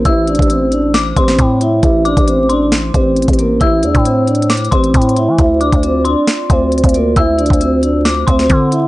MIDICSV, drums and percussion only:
0, 0, Header, 1, 2, 480
1, 0, Start_track
1, 0, Key_signature, 0, "minor"
1, 0, Tempo, 444444
1, 56, Time_signature, 4, 2, 24, 8
1, 9587, End_track
2, 0, Start_track
2, 0, Title_t, "Drums"
2, 55, Note_on_c, 9, 42, 86
2, 57, Note_on_c, 9, 36, 111
2, 163, Note_off_c, 9, 42, 0
2, 165, Note_off_c, 9, 36, 0
2, 297, Note_on_c, 9, 42, 47
2, 377, Note_off_c, 9, 42, 0
2, 377, Note_on_c, 9, 42, 63
2, 423, Note_on_c, 9, 36, 113
2, 457, Note_off_c, 9, 42, 0
2, 457, Note_on_c, 9, 42, 82
2, 531, Note_off_c, 9, 36, 0
2, 538, Note_off_c, 9, 42, 0
2, 538, Note_on_c, 9, 42, 88
2, 646, Note_off_c, 9, 42, 0
2, 776, Note_on_c, 9, 42, 60
2, 884, Note_off_c, 9, 42, 0
2, 1017, Note_on_c, 9, 38, 115
2, 1017, Note_on_c, 9, 42, 70
2, 1125, Note_off_c, 9, 38, 0
2, 1125, Note_off_c, 9, 42, 0
2, 1258, Note_on_c, 9, 36, 95
2, 1258, Note_on_c, 9, 42, 81
2, 1366, Note_off_c, 9, 36, 0
2, 1366, Note_off_c, 9, 42, 0
2, 1383, Note_on_c, 9, 38, 69
2, 1491, Note_off_c, 9, 38, 0
2, 1496, Note_on_c, 9, 42, 83
2, 1497, Note_on_c, 9, 36, 106
2, 1604, Note_off_c, 9, 42, 0
2, 1605, Note_off_c, 9, 36, 0
2, 1738, Note_on_c, 9, 42, 67
2, 1846, Note_off_c, 9, 42, 0
2, 1976, Note_on_c, 9, 42, 84
2, 1977, Note_on_c, 9, 36, 111
2, 2084, Note_off_c, 9, 42, 0
2, 2085, Note_off_c, 9, 36, 0
2, 2217, Note_on_c, 9, 42, 48
2, 2325, Note_off_c, 9, 42, 0
2, 2343, Note_on_c, 9, 36, 110
2, 2344, Note_on_c, 9, 42, 82
2, 2451, Note_off_c, 9, 36, 0
2, 2452, Note_off_c, 9, 42, 0
2, 2459, Note_on_c, 9, 42, 86
2, 2567, Note_off_c, 9, 42, 0
2, 2696, Note_on_c, 9, 42, 62
2, 2804, Note_off_c, 9, 42, 0
2, 2937, Note_on_c, 9, 38, 121
2, 2937, Note_on_c, 9, 42, 71
2, 3045, Note_off_c, 9, 38, 0
2, 3045, Note_off_c, 9, 42, 0
2, 3178, Note_on_c, 9, 36, 96
2, 3178, Note_on_c, 9, 42, 78
2, 3286, Note_off_c, 9, 36, 0
2, 3286, Note_off_c, 9, 42, 0
2, 3417, Note_on_c, 9, 42, 52
2, 3481, Note_off_c, 9, 42, 0
2, 3481, Note_on_c, 9, 42, 64
2, 3544, Note_off_c, 9, 42, 0
2, 3544, Note_on_c, 9, 36, 100
2, 3544, Note_on_c, 9, 42, 72
2, 3600, Note_off_c, 9, 42, 0
2, 3600, Note_on_c, 9, 42, 81
2, 3652, Note_off_c, 9, 36, 0
2, 3658, Note_off_c, 9, 42, 0
2, 3658, Note_on_c, 9, 42, 69
2, 3766, Note_off_c, 9, 42, 0
2, 3895, Note_on_c, 9, 42, 85
2, 3897, Note_on_c, 9, 36, 108
2, 4003, Note_off_c, 9, 42, 0
2, 4005, Note_off_c, 9, 36, 0
2, 4134, Note_on_c, 9, 46, 84
2, 4137, Note_on_c, 9, 42, 77
2, 4242, Note_off_c, 9, 46, 0
2, 4245, Note_off_c, 9, 42, 0
2, 4263, Note_on_c, 9, 36, 106
2, 4264, Note_on_c, 9, 42, 47
2, 4371, Note_off_c, 9, 36, 0
2, 4372, Note_off_c, 9, 42, 0
2, 4379, Note_on_c, 9, 42, 90
2, 4487, Note_off_c, 9, 42, 0
2, 4617, Note_on_c, 9, 42, 40
2, 4697, Note_off_c, 9, 42, 0
2, 4697, Note_on_c, 9, 42, 52
2, 4777, Note_off_c, 9, 42, 0
2, 4777, Note_on_c, 9, 42, 63
2, 4857, Note_off_c, 9, 42, 0
2, 4857, Note_on_c, 9, 38, 115
2, 4857, Note_on_c, 9, 42, 74
2, 4937, Note_off_c, 9, 42, 0
2, 4937, Note_on_c, 9, 42, 57
2, 4965, Note_off_c, 9, 38, 0
2, 5017, Note_off_c, 9, 42, 0
2, 5017, Note_on_c, 9, 42, 47
2, 5097, Note_off_c, 9, 42, 0
2, 5097, Note_on_c, 9, 42, 80
2, 5098, Note_on_c, 9, 36, 96
2, 5205, Note_off_c, 9, 42, 0
2, 5206, Note_off_c, 9, 36, 0
2, 5224, Note_on_c, 9, 42, 50
2, 5332, Note_off_c, 9, 42, 0
2, 5337, Note_on_c, 9, 36, 102
2, 5337, Note_on_c, 9, 42, 85
2, 5417, Note_off_c, 9, 42, 0
2, 5417, Note_on_c, 9, 42, 66
2, 5445, Note_off_c, 9, 36, 0
2, 5497, Note_off_c, 9, 42, 0
2, 5497, Note_on_c, 9, 42, 49
2, 5578, Note_off_c, 9, 42, 0
2, 5578, Note_on_c, 9, 42, 70
2, 5686, Note_off_c, 9, 42, 0
2, 5815, Note_on_c, 9, 42, 82
2, 5817, Note_on_c, 9, 36, 108
2, 5923, Note_off_c, 9, 42, 0
2, 5925, Note_off_c, 9, 36, 0
2, 6056, Note_on_c, 9, 42, 48
2, 6164, Note_off_c, 9, 42, 0
2, 6183, Note_on_c, 9, 36, 110
2, 6184, Note_on_c, 9, 42, 79
2, 6291, Note_off_c, 9, 36, 0
2, 6292, Note_off_c, 9, 42, 0
2, 6298, Note_on_c, 9, 42, 86
2, 6406, Note_off_c, 9, 42, 0
2, 6535, Note_on_c, 9, 42, 64
2, 6643, Note_off_c, 9, 42, 0
2, 6776, Note_on_c, 9, 38, 114
2, 6777, Note_on_c, 9, 42, 71
2, 6884, Note_off_c, 9, 38, 0
2, 6885, Note_off_c, 9, 42, 0
2, 7017, Note_on_c, 9, 36, 95
2, 7018, Note_on_c, 9, 42, 78
2, 7125, Note_off_c, 9, 36, 0
2, 7126, Note_off_c, 9, 42, 0
2, 7257, Note_on_c, 9, 42, 53
2, 7320, Note_off_c, 9, 42, 0
2, 7320, Note_on_c, 9, 42, 65
2, 7384, Note_off_c, 9, 42, 0
2, 7384, Note_on_c, 9, 36, 101
2, 7384, Note_on_c, 9, 42, 70
2, 7440, Note_off_c, 9, 42, 0
2, 7440, Note_on_c, 9, 42, 84
2, 7492, Note_off_c, 9, 36, 0
2, 7498, Note_off_c, 9, 42, 0
2, 7498, Note_on_c, 9, 42, 68
2, 7606, Note_off_c, 9, 42, 0
2, 7735, Note_on_c, 9, 42, 81
2, 7737, Note_on_c, 9, 36, 109
2, 7843, Note_off_c, 9, 42, 0
2, 7845, Note_off_c, 9, 36, 0
2, 7977, Note_on_c, 9, 42, 47
2, 8056, Note_off_c, 9, 42, 0
2, 8056, Note_on_c, 9, 42, 63
2, 8103, Note_on_c, 9, 36, 107
2, 8136, Note_off_c, 9, 42, 0
2, 8136, Note_on_c, 9, 42, 81
2, 8211, Note_off_c, 9, 36, 0
2, 8218, Note_off_c, 9, 42, 0
2, 8218, Note_on_c, 9, 42, 87
2, 8326, Note_off_c, 9, 42, 0
2, 8455, Note_on_c, 9, 42, 62
2, 8563, Note_off_c, 9, 42, 0
2, 8696, Note_on_c, 9, 38, 119
2, 8697, Note_on_c, 9, 42, 72
2, 8804, Note_off_c, 9, 38, 0
2, 8805, Note_off_c, 9, 42, 0
2, 8938, Note_on_c, 9, 36, 94
2, 8938, Note_on_c, 9, 42, 81
2, 9046, Note_off_c, 9, 36, 0
2, 9046, Note_off_c, 9, 42, 0
2, 9063, Note_on_c, 9, 38, 68
2, 9171, Note_off_c, 9, 38, 0
2, 9175, Note_on_c, 9, 42, 84
2, 9177, Note_on_c, 9, 36, 105
2, 9283, Note_off_c, 9, 42, 0
2, 9285, Note_off_c, 9, 36, 0
2, 9418, Note_on_c, 9, 42, 67
2, 9526, Note_off_c, 9, 42, 0
2, 9587, End_track
0, 0, End_of_file